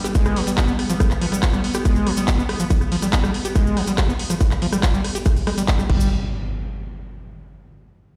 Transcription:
0.00 5.90 G3 medium
0.00 5.90 B3 medium
0.04 0.07 G4 medium
0.04 cross-stick soft
0.04 closed hi-hat medium
0.04 cabasa medium
0.15 0.38 G#3 medium
0.15 kick loud
0.15 closed hi-hat medium
0.15 cabasa medium
0.25 cross-stick medium
0.25 cabasa soft
0.36 0.41 F3 medium
0.36 open hi-hat loud
0.47 0.52 G3 medium
0.47 closed hi-hat medium
0.47 cabasa medium
0.58 0.60 G4 loud
0.58 kick loud
0.58 cross-stick soft
0.58 clap loud
0.58 closed hi-hat medium
0.58 cabasa medium
0.68 0.73 B3 medium
0.68 cabasa soft
0.79 cross-stick soft
0.79 open hi-hat loud
0.90 0.94 F3 medium
0.90 closed hi-hat medium
0.90 cabasa medium
1.00 1.03 G3 medium
1.00 kick loud
1.00 cross-stick medium
1.00 closed hi-hat medium
1.00 cabasa medium
1.11 clap soft
1.11 cabasa soft
1.21 1.26 F3 medium
1.21 open hi-hat loud
1.32 1.37 G3 medium
1.32 cross-stick soft
1.32 closed hi-hat medium
1.32 cabasa medium
1.43 kick loud
1.43 clap loud
1.43 closed hi-hat medium
1.43 cabasa medium
1.53 1.60 G3 medium
1.53 cross-stick soft
1.53 cabasa soft
1.64 open hi-hat loud
1.74 1.77 G4 medium
1.74 cross-stick medium
1.74 closed hi-hat medium
1.74 cabasa medium
1.85 2.08 G#3 medium
1.85 kick loud
1.85 closed hi-hat medium
1.85 cabasa medium
1.96 cabasa soft
2.07 2.11 F3 medium
2.07 cross-stick soft
2.07 open hi-hat loud
2.17 2.22 G3 medium
2.17 closed hi-hat medium
2.17 cabasa medium
2.28 2.31 G4 loud
2.28 kick loud
2.28 cross-stick soft
2.28 clap loud
2.28 closed hi-hat medium
2.28 cabasa medium
2.38 2.43 B3 medium
2.38 cabasa soft
2.49 cross-stick medium
2.49 open hi-hat loud
2.60 2.64 F3 medium
2.60 closed hi-hat medium
2.60 cabasa medium
2.70 2.73 G3 medium
2.70 kick loud
2.70 closed hi-hat medium
2.70 cabasa medium
2.81 cross-stick soft
2.81 cabasa soft
2.92 2.96 F3 medium
2.92 open hi-hat loud
3.02 3.07 G3 medium
3.02 cross-stick soft
3.02 closed hi-hat medium
3.02 cabasa medium
3.13 kick loud
3.13 clap loud
3.13 closed hi-hat medium
3.13 cabasa medium
3.24 3.31 G3 medium
3.24 cross-stick medium
3.24 cabasa soft
3.34 open hi-hat loud
3.45 3.48 G4 medium
3.45 closed hi-hat medium
3.45 cabasa medium
3.55 3.78 G#3 medium
3.55 kick loud
3.55 cross-stick soft
3.55 closed hi-hat medium
3.55 cabasa medium
3.66 cabasa soft
3.77 3.82 F3 medium
3.77 cross-stick soft
3.77 open hi-hat loud
3.87 3.92 G3 medium
3.87 closed hi-hat medium
3.87 cabasa medium
3.98 4.01 G4 loud
3.98 kick loud
3.98 cross-stick medium
3.98 clap loud
3.98 closed hi-hat medium
3.98 cabasa medium
4.09 4.13 B3 medium
4.09 cabasa soft
4.19 open hi-hat loud
4.30 4.35 F3 medium
4.30 cross-stick soft
4.30 closed hi-hat medium
4.30 cabasa medium
4.41 4.43 G3 medium
4.41 kick loud
4.41 closed hi-hat medium
4.41 cabasa medium
4.51 cross-stick soft
4.51 clap soft
4.51 cabasa soft
4.62 4.67 F3 medium
4.62 open hi-hat loud
4.73 4.77 G3 medium
4.73 cross-stick medium
4.73 closed hi-hat medium
4.73 cabasa medium
4.83 kick loud
4.83 clap loud
4.83 closed hi-hat medium
4.83 cabasa medium
4.94 5.01 G3 medium
4.94 cabasa soft
5.04 cross-stick soft
5.04 open hi-hat loud
5.15 5.18 G4 medium
5.15 closed hi-hat medium
5.15 cabasa medium
5.25 5.29 G#3 medium
5.25 kick loud
5.25 cross-stick soft
5.25 closed hi-hat medium
5.25 cabasa medium
5.36 open hi-hat medium
5.36 cabasa soft
5.47 5.50 G#3 loud
5.47 cross-stick medium
5.47 open hi-hat loud
5.58 5.62 G3 medium
5.58 closed hi-hat medium
5.58 cabasa medium
5.68 5.71 B3 medium
5.68 kick loud
5.68 clap loud
5.68 closed hi-hat medium
5.68 cabasa medium
5.79 5.84 G3 medium
5.79 cross-stick soft
5.79 cabasa soft
5.90 6.09 G1 loud
5.90 6.09 G3 medium
5.90 kick loud
5.90 crash medium
5.90 impact medium
6.00 cabasa medium

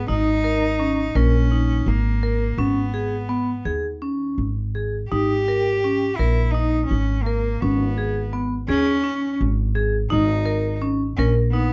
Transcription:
0.08 1.11 G#1 medium
0.08 0.28 D#4 medium
0.08 1.17 D#4 medium
0.44 0.63 A#4 medium
0.79 0.99 C#4 medium
1.15 1.82 A#1 medium
1.15 1.89 C#4 medium
1.15 1.35 A#4 medium
1.52 1.90 D#4 medium
1.86 2.53 G#1 medium
1.86 2.60 A#3 medium
2.23 2.42 A#4 medium
2.57 3.61 G#1 medium
2.57 3.65 B3 medium
2.57 2.77 C#4 medium
2.94 3.13 G#4 medium
3.29 3.49 B3 medium
3.65 4.33 D#2 medium
3.65 3.85 G#4 medium
4.02 4.41 C#4 medium
4.38 5.06 G#1 medium
4.75 4.94 G#4 medium
5.09 6.15 G#1 medium
5.09 5.31 D#4 medium
5.09 6.18 G4 medium
5.48 5.67 A#4 medium
5.84 6.03 C#4 medium
6.16 6.87 A#1 medium
6.16 6.52 E4 medium
6.16 6.39 A#4 medium
6.50 6.85 D#4 medium
6.55 6.94 D#4 medium
6.86 7.24 C#4 medium
6.91 7.58 G#1 medium
7.23 7.62 A#3 medium
7.23 7.46 A#4 medium
7.60 8.65 G#1 medium
7.60 8.33 B3 medium
7.60 7.82 C#4 medium
7.98 8.17 G#4 medium
8.33 8.53 B3 medium
8.68 9.36 D#2 medium
8.68 9.36 C#4 medium
8.68 8.88 G#4 medium
9.04 9.43 C#4 medium
9.41 10.07 G#1 medium
9.75 9.95 G#4 medium
10.10 11.14 G#1 medium
10.10 10.78 D#4 medium
10.10 10.30 D#4 medium
10.46 10.65 A#4 medium
10.81 11.01 C#4 medium
11.17 11.73 A#1 medium
11.17 11.33 C#4 medium
11.17 11.38 A#4 medium
11.52 11.73 B3 medium
11.52 11.73 D#4 medium

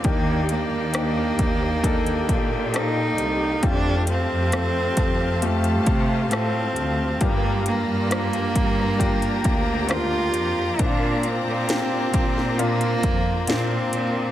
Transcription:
0.00 7.17 G4 medium
0.00 3.59 D5 medium
0.00 3.59 F5 medium
0.00 3.59 G5 medium
0.04 0.68 D#2 medium
0.04 1.35 D#3 soft
0.04 0.90 A#3 medium
0.04 0.48 A#3 medium
0.04 0.90 D4 medium
0.04 0.90 D#4 medium
0.04 0.90 G4 medium
0.04 kick medium
0.04 closed hi-hat medium
0.49 2.77 A#3 medium
0.49 closed hi-hat medium
0.72 1.35 D#2 medium
0.94 1.80 A#3 medium
0.94 1.80 D4 medium
0.94 1.80 D#4 medium
0.94 1.80 G4 medium
0.94 cross-stick loud
0.94 closed hi-hat medium
1.39 2.25 D#2 medium
1.39 kick medium
1.39 closed hi-hat medium
1.63 cross-stick soft
1.84 2.69 A#3 medium
1.84 2.69 D4 medium
1.84 2.70 D#4 medium
1.84 2.70 A4 medium
1.84 kick medium
1.84 closed hi-hat medium
2.06 closed hi-hat soft
2.29 3.15 A#2 medium
2.29 kick medium
2.29 closed hi-hat medium
2.73 3.58 A#3 medium
2.73 3.59 D#4 medium
2.73 3.67 D#4 medium
2.73 3.59 A4 medium
2.73 3.59 D5 medium
2.73 cross-stick medium
2.73 closed hi-hat medium
3.18 3.60 C2 medium
3.18 closed hi-hat medium
3.62 4.27 F2 medium
3.62 4.48 A3 medium
3.62 4.48 C4 medium
3.62 4.09 D4 medium
3.62 4.48 F4 medium
3.62 4.48 G4 medium
3.62 7.18 C5 medium
3.62 8.97 F5 medium
3.62 7.18 A5 medium
3.62 kick medium
3.62 closed hi-hat medium
4.07 5.46 C4 medium
4.07 closed hi-hat medium
4.30 4.93 F2 medium
4.52 5.38 A3 medium
4.52 5.38 C4 medium
4.52 5.38 F4 medium
4.52 5.38 A4 medium
4.52 cross-stick loud
4.52 closed hi-hat medium
4.97 5.87 F2 medium
4.97 kick medium
4.97 closed hi-hat medium
5.21 cross-stick soft
5.42 6.27 A3 medium
5.42 6.35 A3 medium
5.42 6.27 C4 medium
5.42 6.27 F4 medium
5.42 6.28 G4 medium
5.42 closed hi-hat medium
5.64 closed hi-hat soft
5.86 6.29 C3 medium
5.86 kick medium
5.86 closed hi-hat medium
6.31 6.73 A2 medium
6.31 7.17 A3 medium
6.31 7.17 C4 medium
6.31 7.24 C4 medium
6.31 7.17 F4 soft
6.31 7.17 A4 medium
6.31 cross-stick loud
6.31 closed hi-hat medium
6.76 7.18 D2 medium
6.76 closed hi-hat medium
7.20 8.52 G2 medium
7.20 7.84 G2 medium
7.20 8.06 A#3 medium
7.20 7.67 A#3 medium
7.20 8.06 D4 medium
7.20 8.06 F4 medium
7.20 10.76 G4 medium
7.20 8.07 G4 medium
7.20 14.32 D5 medium
7.20 14.32 A#5 medium
7.20 kick loud
7.20 closed hi-hat medium
7.66 9.92 A#3 medium
7.66 closed hi-hat medium
7.88 8.52 G2 medium
8.10 8.96 A#3 medium
8.10 8.96 D4 medium
8.10 8.96 F4 medium
8.10 8.96 A#4 medium
8.10 cross-stick loud
8.10 closed hi-hat medium
8.33 closed hi-hat soft
8.56 9.41 G2 medium
8.56 kick medium
8.56 closed hi-hat medium
8.80 cross-stick soft
8.99 9.85 A#3 medium
8.99 9.85 D4 medium
8.99 9.85 F4 medium
8.99 9.85 G4 medium
8.99 10.77 G5 soft
8.99 kick medium
8.99 closed hi-hat medium
9.22 closed hi-hat soft
9.44 10.31 D2 medium
9.44 kick medium
9.44 closed hi-hat medium
9.89 10.75 A#3 medium
9.89 10.75 D4 soft
9.89 10.75 F4 medium
9.89 10.82 F4 medium
9.89 10.75 A#4 medium
9.89 cross-stick loud
9.89 closed hi-hat medium
10.34 10.77 F2 medium
10.34 closed hi-hat medium
10.78 12.10 A#2 medium
10.78 11.43 A#2 loud
10.78 11.64 A#3 medium
10.78 11.64 C4 medium
10.78 11.65 D4 medium
10.78 11.27 D4 medium
10.78 10.86 E4 medium
10.78 14.32 F4 medium
10.78 14.32 C5 medium
10.78 kick loud
10.78 closed hi-hat medium
10.86 11.68 F4 medium
11.23 12.62 C4 medium
11.23 closed hi-hat medium
11.47 12.10 A#2 medium
11.68 12.54 A#3 medium
11.68 12.54 C4 medium
11.68 12.54 D4 medium
11.68 12.54 G4 medium
11.68 snare medium
11.68 closed hi-hat medium
12.14 13.00 A#2 medium
12.14 kick medium
12.14 closed hi-hat medium
12.38 snare soft
12.58 13.44 A#3 medium
12.58 13.52 A#3 loud
12.58 13.44 C4 medium
12.58 13.44 D4 medium
12.58 13.44 F4 medium
12.58 closed hi-hat medium
12.81 closed hi-hat soft
13.03 13.45 F2 medium
13.03 kick medium
13.03 closed hi-hat medium
13.47 13.90 A#2 medium
13.47 14.32 A#3 medium
13.47 14.32 C4 medium
13.47 14.32 D4 medium
13.47 14.32 F4 medium
13.47 snare loud
13.47 closed hi-hat medium
13.93 14.32 A#2 medium
13.93 closed hi-hat medium

